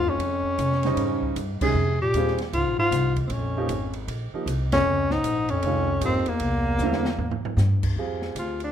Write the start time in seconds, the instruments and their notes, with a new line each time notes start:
Already playing: upright bass D#2, tenor saxophone F4
0.06 bass clarinet F2, tenor saxophone C#4
0.18 upright bass F2, ride
0.43 muted upright bass stroke
0.58 upright bass C3, hi-hat pedal, ride
0.72 snare
0.83 grand piano C#3 G3 D#4 C5, snare, ride
0.96 upright bass G#2, ride
1.22 kick
1.36 upright bass G2, hi-hat pedal, ride
1.61 bass clarinet C3, grand piano D#3 G#3 C#4 G4, tenor saxophone G#4, muted upright bass stroke, kick, crash
1.74 upright bass F2
2.01 bass clarinet A#2, tenor saxophone G4
2.14 upright bass D#2, grand piano G3 C4 F4 G#4, hi-hat pedal, ride
2.28 snare
2.38 snare, ride
2.52 upright bass C#2, bass clarinet G#2, tenor saxophone F4, ride
2.66 upright bass A#1
2.78 upright bass G#1, bass clarinet G#2, tenor saxophone F4
2.91 upright bass C2, snare, hi-hat pedal, ride
3.16 kick, ride
3.27 upright bass A#1, bass clarinet D#2 F2, tenor saxophone C4, ride
3.33 tenor saxophone C#4
3.57 grand piano F3 A#3 D#4 G4
3.68 upright bass G#1, hi-hat pedal, ride
3.93 ride
4.08 upright bass A#1, ride
4.33 grand piano F3 A#3 D#4 G4, muted upright bass stroke
4.46 upright bass C2, hi-hat pedal, ride
4.71 bass clarinet F2, tenor saxophone C#4, snare, ride
4.85 upright bass C#2
5.10 bass clarinet G#2, tenor saxophone D#4, snare
5.24 upright bass A#1, hi-hat pedal, ride
5.49 bass clarinet F2, tenor saxophone C#4, ride
5.63 upright bass C2, grand piano D#3 G#3 C#4 F4, ride
6.01 upright bass G#1, bass clarinet F2, grand piano F3 A#3 D#4 G4, hi-hat pedal, ride
6.05 tenor saxophone C4
6.26 bass clarinet E2, tenor saxophone A#3, muted upright bass stroke, ride
6.40 upright bass C2, ride
6.78 upright bass D2, grand piano D3 G3, snare, hi-hat pedal
6.83 grand piano C4 E4
6.92 snare
7.05 snare
7.18 upright bass E2, floor tom
7.31 floor tom
7.43 muted upright bass stroke, floor tom
7.57 upright bass G2, snare, hi-hat pedal
7.83 kick, crash
7.96 upright bass F2, grand piano C4 F4 G4 G#4
8.22 snare
8.35 upright bass D2, tenor saxophone F4, hi-hat pedal, ride
8.60 ride
8.64 tenor saxophone D4